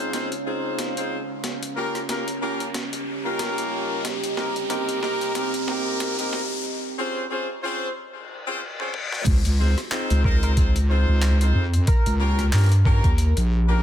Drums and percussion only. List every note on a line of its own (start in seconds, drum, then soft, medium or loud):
0.00 closed hi-hat soft
0.13 snare soft
0.13 closed hi-hat medium
0.32 closed hi-hat medium
0.79 snare medium
0.79 closed hi-hat medium
0.97 closed hi-hat medium
1.44 snare medium
1.44 closed hi-hat medium
1.63 closed hi-hat medium
1.95 cross-stick soft
1.95 closed hi-hat soft
2.09 snare medium
2.09 closed hi-hat medium
2.28 closed hi-hat medium
2.60 closed hi-hat soft
2.74 snare medium
2.74 closed hi-hat medium
2.93 closed hi-hat medium
3.39 snare medium
3.39 closed hi-hat medium
3.58 closed hi-hat medium
4.05 snare medium
4.05 closed hi-hat medium
4.24 closed hi-hat medium
4.37 snare medium
4.56 closed hi-hat soft
4.70 snare medium
4.70 closed hi-hat medium
4.89 closed hi-hat medium
5.03 snare medium
5.21 closed hi-hat soft
5.35 snare medium
5.35 closed hi-hat medium
5.54 closed hi-hat medium
5.68 snare medium
6.00 snare medium
6.00 closed hi-hat medium
6.19 closed hi-hat medium
6.33 snare medium
8.80 high tom medium
8.94 mid tom medium
9.12 snare medium
9.26 kick loud
9.26 closed hi-hat medium
9.26 crash loud
9.45 closed hi-hat medium
9.78 cross-stick soft
9.78 closed hi-hat soft
9.92 clap loud
9.92 closed hi-hat medium
10.10 closed hi-hat medium
10.24 kick loud
10.43 closed hi-hat soft
10.57 kick loud
10.57 closed hi-hat medium
10.76 closed hi-hat medium
11.22 clap loud
11.22 closed hi-hat medium
11.41 closed hi-hat medium
11.74 closed hi-hat soft
11.87 kick loud
11.87 closed hi-hat medium
12.06 closed hi-hat medium
12.39 cross-stick soft
12.39 closed hi-hat soft
12.53 clap loud
12.53 closed hi-hat medium
12.55 closed hi-hat medium
12.58 closed hi-hat medium
12.61 closed hi-hat soft
12.64 closed hi-hat soft
12.66 closed hi-hat soft
12.69 closed hi-hat soft
12.72 closed hi-hat medium
12.85 kick loud
13.04 kick loud
13.04 closed hi-hat soft
13.18 closed hi-hat medium
13.37 closed hi-hat medium